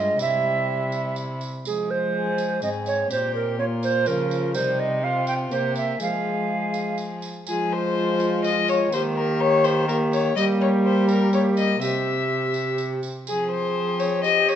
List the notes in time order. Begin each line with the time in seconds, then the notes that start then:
Already playing: G2 G#3 F4
0.01 D#5
0.19 C3 G3 E4 E5, tambourine
0.92 tambourine
1.16 tambourine
1.41 tambourine
1.65 F3 G#3 G#4, tambourine
1.91 C5
2.15 G#4
2.38 tambourine
2.62 G#2 C4 G#4 D#5, tambourine
2.86 C#5, tambourine
3.11 A#2 C4 G4 C5, tambourine
3.35 A#4
3.59 A#3 F4 C#5
3.83 C5, tambourine
4.06 C#3 F3 A#4, tambourine
4.31 tambourine
4.54 C3 G3 D#4 C5, tambourine
4.80 D#5
5.03 C4 F4 F5
5.27 G5, tambourine
5.51 C3 A#3 G4 C5, tambourine
5.76 E5, tambourine
6.00 F3 G#3 G#4 F5, tambourine
6.74 tambourine
6.98 tambourine
7.22 tambourine
7.47 F3 G#3 F4 G#4, tambourine
7.72 C5
8.20 tambourine
8.44 D#5, tambourine
8.68 C#5, tambourine
8.92 D#3 A#3 G4 C5, tambourine
9.16 A#4
9.41 C#5
9.64 C5, tambourine
9.88 A#3 G4 A#4, tambourine
10.13 C#5, tambourine
10.36 G3 A#3 G4 D#5, tambourine
10.61 C#5
10.86 C5
11.09 A#4, tambourine
11.32 A#3 G4 C#5, tambourine
11.57 D#5, tambourine
11.81 C3 C4 G4 E5, tambourine
12.54 tambourine
12.78 tambourine
13.03 tambourine
13.26 F3 C4 G#4, tambourine
13.51 C5
14.00 C#5, tambourine
14.24 G4 D#5, tambourine
14.49 C#5, tambourine